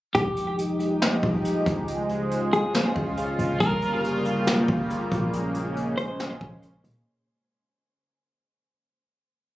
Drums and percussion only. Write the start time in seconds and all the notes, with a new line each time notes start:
0.15 kick, closed hi-hat
0.37 closed hi-hat
0.59 closed hi-hat
0.80 closed hi-hat
1.02 snare, closed hi-hat
1.23 kick
1.45 closed hi-hat
1.66 kick, closed hi-hat
1.88 closed hi-hat
2.09 closed hi-hat
2.31 closed hi-hat
2.52 closed hi-hat
2.74 snare, closed hi-hat
2.96 kick
3.17 closed hi-hat
3.39 closed hi-hat
3.60 kick, closed hi-hat
3.82 closed hi-hat
4.04 closed hi-hat
4.25 closed hi-hat
4.47 snare, closed hi-hat
4.68 kick
4.90 closed hi-hat
5.12 kick, closed hi-hat
5.33 closed hi-hat
5.54 closed hi-hat
5.76 closed hi-hat
5.98 closed hi-hat
6.19 snare, closed hi-hat
6.41 kick
6.62 closed hi-hat
6.84 closed hi-hat
6.89 closed hi-hat
6.95 closed hi-hat
7.00 closed hi-hat